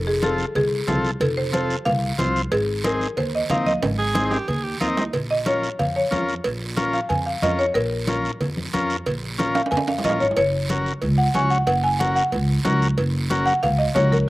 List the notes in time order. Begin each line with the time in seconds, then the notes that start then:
Already playing: F1
0.07 G#4
0.22 C4 F4 A4, cowbell, high conga, short guiro
0.38 short guiro
0.55 C2 G#4, cowbell, high conga, low conga, long guiro
0.87 C2 C4 F4 A4, cowbell, high conga, low conga, low timbale, short guiro
1.05 short guiro
1.20 F1 A4, cowbell, high conga, low conga, long guiro
1.37 C5
1.52 C4 F4 A4 C5, cowbell, high conga, short guiro
1.70 short guiro
1.85 C2 F5, cowbell, high conga, low conga, long guiro
2.18 C2 C4 F4 C5, cowbell, high conga, low timbale, short guiro
2.36 short guiro
2.51 G#1 G#4, cowbell, high conga, long guiro
2.84 C4 D#4 G#4 A#4, cowbell, high conga, short guiro
3.01 short guiro
3.17 D#2 C5, cowbell, high conga, low conga, long guiro
3.35 D#5
3.50 D#2 C4 D#4 A#4 F5, cowbell, high conga, low conga, low timbale, short guiro
3.66 D#5, high conga, short guiro
3.83 G#1, cowbell, high conga, low conga, high timbale, long guiro
3.99 G#4
4.14 C4 D#4 G#4, cowbell, high conga, low timbale, short guiro
4.31 G4, high timbale, short guiro
4.48 D#2 G#4, cowbell, high conga, low conga, long guiro
4.63 G4
4.80 D#2 C4 D#4 F4 A#4, cowbell, high conga, short guiro
4.88 D#4
4.97 low timbale, short guiro
5.13 A#1, cowbell, high conga, low conga, long guiro
5.31 D#5
5.46 C#4 F4 A#4 C#5, cowbell, high conga, short guiro
5.63 short guiro
5.79 F2 F5, cowbell, high conga, low conga, long guiro
5.96 C#5
6.11 F2 C#4 F4 A#4, cowbell, high conga, low timbale, short guiro
6.29 short guiro
6.44 A#1, cowbell, high conga, long guiro
6.77 C#4 F4 A#4, cowbell, high conga, short guiro
6.93 F5, short guiro
7.09 F2 G#5, cowbell, high conga, low conga, long guiro
7.26 F5
7.42 F2 C#4 F4 A#4 D#5, cowbell, high conga, low timbale, short guiro
7.59 C#5, short guiro
7.74 A#1 A#4, cowbell, high conga, long guiro
8.07 C#4 F4 A#4, cowbell, high conga, short guiro
8.25 short guiro
8.41 F2, cowbell, high conga, low conga, long guiro
8.57 high conga
8.73 F2 C#4 F4 A#4, cowbell, high conga, short guiro
8.90 short guiro
9.06 A#1, cowbell, high conga, low conga, long guiro
9.38 C#4 F4 A#4, cowbell, high conga, short guiro
9.55 F5, high timbale, short guiro
9.66 high timbale
9.71 F2 G#5, cowbell, high conga, low conga, long guiro
9.77 high timbale
9.88 F5, high timbale
9.98 low timbale
10.04 A#1 C#4 F4 A#4 D#5, cowbell, high conga, short guiro
10.09 low timbale
10.20 G#1 C#5, short guiro
10.31 low timbale
10.36 F#1 C#5, cowbell, high conga, long guiro
10.69 C#4 F#4 A#4, cowbell, high conga, short guiro
10.86 short guiro
11.02 C#2, cowbell, high conga, low conga, long guiro
11.18 F#5
11.34 C#2 C#4 F#4 C#5 G#5, cowbell, high conga, low timbale, short guiro
11.50 F#5, short guiro
11.67 F#1 F#5, cowbell, high conga, long guiro
11.84 G#5
11.99 C#4 F#4 A#4 F#5, cowbell, high conga, short guiro
12.16 F#5, short guiro
12.32 C#2, cowbell, high conga, low conga, long guiro
12.64 C#2 C#4 F#4 A#4, cowbell, high conga, low timbale, short guiro
12.82 short guiro
12.98 F#1, cowbell, long guiro
13.30 C#4 F#4 A#4, cowbell, high conga, short guiro
13.46 F#5, short guiro
13.63 C#2 F5, cowbell, high conga, low conga, long guiro
13.78 D#5
13.95 C#2 C#4 F#4 A#4 C#5, cowbell, high conga, low conga, low timbale, short guiro
14.12 A#4, high conga, short guiro